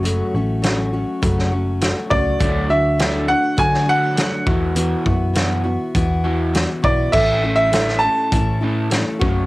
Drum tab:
CC |----------------|----------------|----------------|x---------------|
HH |x---x---x---x---|x---x---x---x---|x---x---x---x---|----x---x---x---|
SD |----o----o--o---|----o----o--o---|----o-------o---|----oo------o---|
BD |--------o-----o-|o-------o-----o-|--o-----o-----o-|o-------o-----o-|